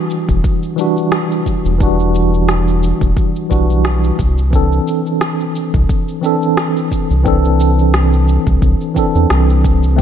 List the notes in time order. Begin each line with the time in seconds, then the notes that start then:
Already playing: E3 G3 D4 F#4
0.10 shaker
0.29 E1, kick, shaker
0.44 kick, shaker
0.63 shaker
0.76 E3 G3 D4, shaker
0.81 F#4
0.97 shaker
1.12 cross-stick, shaker
1.31 shaker
1.46 kick, shaker
1.65 E1, shaker
1.78 E3 G3 D4, kick, shaker
1.83 F#4
2.00 shaker
2.15 shaker
2.34 shaker
2.49 cross-stick, shaker
2.68 shaker
2.83 shaker
3.01 E1, kick, shaker
3.17 kick, shaker
3.36 shaker
3.50 B1 E3 G3 D4 F#4, kick, shaker
3.70 shaker
3.85 cross-stick, shaker
4.04 shaker
4.19 C2, kick, shaker
4.38 shaker
4.51 E3 C4 D4, kick, shaker
4.56 A4
4.72 shaker
4.87 shaker
5.06 shaker
5.21 cross-stick, shaker
5.40 shaker
5.55 shaker
5.74 C2, kick, shaker
5.89 kick, shaker
6.08 shaker
6.21 E3 C4 D4, shaker
6.26 A4
6.42 shaker
6.57 cross-stick, shaker
6.77 shaker
6.92 kick, shaker
7.10 C2, shaker
7.23 E3 C4 D4, kick, shaker
7.28 A4
7.45 shaker
7.60 shaker
7.79 shaker
7.94 cross-stick, shaker
8.13 shaker
8.28 shaker
8.47 C2, kick, shaker
8.62 C2, kick, shaker
8.81 shaker
8.94 E3 C4 D4, kick, shaker
8.99 A4
9.15 E2, shaker
9.30 C2, cross-stick, shaker
9.49 shaker
9.64 kick, shaker
9.83 shaker
9.96 A1 A3 C4, kick, shaker